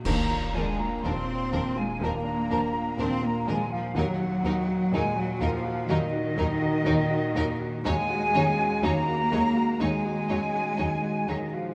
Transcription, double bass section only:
\new Staff \with { instrumentName = "Double bass section" } { \clef bass \time 4/4 \key bes \minor \tempo 4 = 62 ees,8 ees,8 ees,8 ees,8 ees,8 ees,8 ees,8 ees,8 | ees,8 ees,8 ees,8 ees,8 ees,8 ees,8 ees,8 ees,8 | ees,8 ees,8 ees,8 ees,8 ees,8 ees,8 ees,8 ees,8 | }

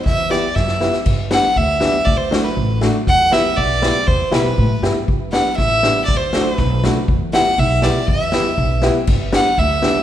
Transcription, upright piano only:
\new Staff \with { instrumentName = "Upright piano" } { \time 2/4 \key e \minor \tempo 4 = 120 r8 <b e' g'>16 r8. <b e' g'>16 r16 | r8 <b d' g'>16 r8. <b d' g'>16 r16 | r8 <a d' fis'>16 r8. <a d' fis'>16 r16 | r8 <b e' g'>16 r8. <b e' g'>16 r16 |
r8 <b e' g'>16 r8. <b e' g'>16 r16 | r8 <b d' g'>16 r8. <b d' g'>16 r16 | r8 <a d' fis'>16 r8. <a d' fis'>16 r16 | r8 <b e' g'>16 r8. <b e' g'>16 r16 |
r8 <b e' g'>16 r8. <b e' g'>16 r16 | r8 <b d' g'>16 r8. <b d' g'>16 r16 | }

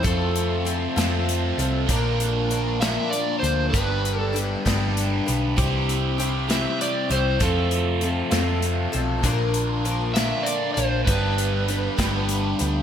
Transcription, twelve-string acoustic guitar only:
\new Staff \with { instrumentName = "Twelve-string acoustic guitar" } { \time 6/8 \key f \lydian \tempo 4. = 65 <f c' f' a'>4 <f c' f' a'>8 <f c' f' a'>4 <c' f' a'>8 | <bes, d f bes d' bes'>4 <f bes d' bes'>8 <bes, d f bes d' bes'>4 <f bes d' bes'>8 | <g, d g b d' b'>4 <g b d' b'>8 <g, d g b d' b'>4 <g b d' b'>8 | <c g c' e' g'>4 <g c' e' g'>8 <c g c' e' g'>4 <c' e' g'>8 |
<f c' f' a'>4 <f c' f' a'>8 <f c' f' a'>4 <c' f' a'>8 | <bes, d f bes d' bes'>4 <f bes d' bes'>8 <bes, d f bes d' bes'>4 <f bes d' bes'>8 | <g, d g b d' b'>4 <g b d' b'>8 <g, d g b d' b'>4 <g b d' b'>8 | }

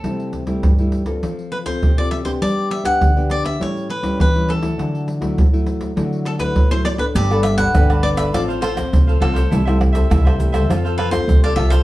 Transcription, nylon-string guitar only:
\new Staff \with { instrumentName = "Nylon-string guitar" } { \time 4/4 \key g \major \tempo 4 = 101 << { <g a e'>8. <g a e'>8 <g a e'>8 <c' f' a'>4 <c' f' a'>8 <c' f' a'>8 <b d' g'>16~ | <b d' g'>8. <b d' g'>8 <b d' g'>8. <g cis' e'>8 r16 <g cis' e'>8 <g cis' e'>8 <fis a e'>16~ | <fis a e'>8. <fis a e'>8 <fis a e'>8. <fis a e'>8. <fis a e'>8 <fis a e'>8 <b d' a'>16~ | <b d' a'>16 <b d' a'>8. <b d' a'>16 r16 <b d' a'>8 <f c' f'>8 r16 <f c' f'>8. <f c' f'>16 r16 |
<g a e'>16 <g a e'>8. <g a e'>16 r16 <g a e'>8 <c' f' a'>8 r16 <c' f' a'>8. <c' f' a'>8 | } \\ { c4 g,4 f4 c4 | g4 d4 a,4 e4 | d4 a,4 d4 a,4 | g4 d4 a,4 a,4 |
c4 g,4 f4 c4 | } >> }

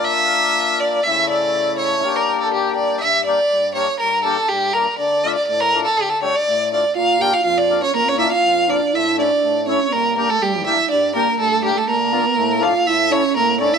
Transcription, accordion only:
<<
  \new Staff \with { instrumentName = "Accordion" } { \time 2/4 \tempo 4 = 122 <bes d' f'>2 | <cis a e'>2 | <bes d' g'>2 | r8 <bes d' g'>16 r8. <bes d' g'>16 r16 |
r8 <bes d' g'>16 r8. <bes d' bes'>16 r16 | r8 <a d' f'>16 r8. <a d' f'>16 r16 | r8 <a d' g'>16 r8. <a d' f'>16 r16 | r8 <bes d' f'>16 r8. <bes d' f'>16 r16 |
r8 <bes d' f'>16 r8. <bes d' f'>16 r16 | r8 <a cis' e'>16 r8. <a cis' e'>16 r16 | r8 <bes d' g'>16 r8. <bes d' g'>16 r16 | r8 <bes d' g'>16 r8. <bes d' g'>16 r16 |
r8 <d' f' a'>16 r8. <d' f' a'>16 r16 | r8 <cis' e' a'>16 r8. <cis' e' a'>16 r16 | }
  \new Staff \with { instrumentName = "Accordion" } { \clef bass \time 2/4 r2 | r2 | r2 | g,4 g,4 |
g,4 g,4 | d4 a,4 | d4 a,4 | bes,4 f,4 |
bes,4 f,4 | a,4 a,4 | g,4 g,4 | g,4 g,4 |
d4 a,4 | a,4 a,4 | }
>>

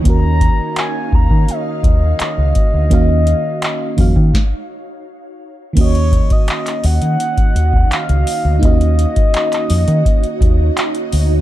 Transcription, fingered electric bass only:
\new Staff \with { instrumentName = "Fingered electric bass" } { \clef bass \time 4/4 \key ees \minor \tempo 4 = 84 ees,8. r8. ees,16 ees16 r8 ees,8 r16 des,16 r16 d,16 | ees,8. r8. f,16 ees16 r2 | ees,8. r8. ees,16 ees16 r8 ees,8 r16 des,16 r16 d,16 | ees,8. r8. f,16 ees16 r8 ees,8 r8 d,8 | }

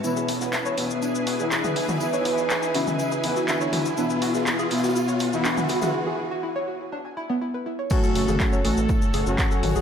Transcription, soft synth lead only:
\new Staff \with { instrumentName = "Soft synth lead" } { \time 4/4 \key e \mixolydian \tempo 4 = 122 b4. b2 r8 | r4. cis'4. d'4 | b4. b2 r8 | r1 |
a4. a2 r8 | }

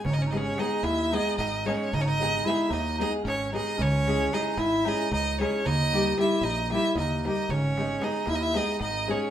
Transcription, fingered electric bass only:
\new Staff \with { instrumentName = "Fingered electric bass" } { \clef bass \time 7/8 \key gis \minor \tempo 4 = 113 gis,,4. dis,4 gis,,4 | gis,,4. dis,4 gis,,4 | cis,4. gis,,4 cis,4 | dis,4. ais,,4 dis,4 |
gis,,4. dis,4 gis,,4 | }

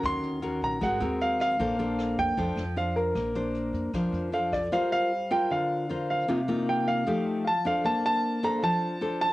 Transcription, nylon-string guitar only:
\new Staff \with { instrumentName = "Nylon-string guitar" } { \time 4/4 \key bes \major \tempo 4 = 154 << { <des' ges' bes'>4 <des' ges' bes'>4 <c' ges' bes'>8 <c' ges' bes'>4. | <d' a' c''>8 <d' a' c''>4. <d' a' c''>8 r8 <d' c''>4~ | <d' c''>8 <d' c''>4. <d' c''>4 <d' a' c''>8 r8 | \key g \minor <f' bes' c''>4 r8 <f' bes' c''>4. <f' bes' c''>4 |
<bes ees' f'>8 <bes ees' f'>4. <a ees' g'>4 r8 <d' a' c''>8~ | <d' a' c''>4. <d' a' c''>4. <d' a' c''>8 r8 | } \\ { ees2 aes2 | bes2 f2 | bes2 f2 | g2 d2 |
c2 f2 | bes2 f2 | } >> }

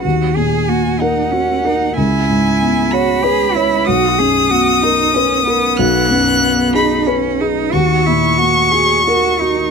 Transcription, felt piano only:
\new Staff \with { instrumentName = "Felt piano" } { \time 6/8 \key dis \phrygian \tempo 4. = 62 dis,8 ais,8 ais8 ais'8 fis'8 ais'8 | cis,8 gis,8 b8 cis''8 b'8 cis''8 | b,,8 fis,8 b8 ais'8 b'8 ais'8 | b,,8 fis,8 b8 gis'8 b'8 gis'8 |
dis,8 ais,8 ais8 fis'8 ais'8 fis'8 | }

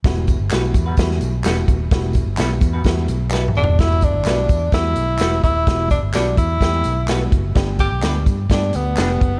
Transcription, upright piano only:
\new Staff \with { instrumentName = "Upright piano" } { \time 4/4 \key e \minor \tempo 4 = 128 << { r1 | r2. <g' e''>8 <b g'>8~ | <b g'>8 r2. r8 | r1 |
r1 | } \\ { <g b e' fis'>8 r8 <g b e' fis'>8 r8 <g b e' fis'>8 r8 <g b e' fis'>8 r8 | <g b e' fis'>8 r8 <g b e' fis'>8 r8 <g b e' fis'>8 r4. | <g b e' fis'>8 r8 <g b e' fis'>8 r8 <g b e' fis'>8 r8 <g b e' fis'>8 r8 | <g b e' fis'>8 r8 <g b e' fis'>8 r8 <g b e' g'>8 r8 <g b e' fis'>8 r8 |
<g b d' g'>8 r8 <g b d' g'>8 r8 <g b d' g'>8 r8 <g b d' g'>8 r8 | } >> }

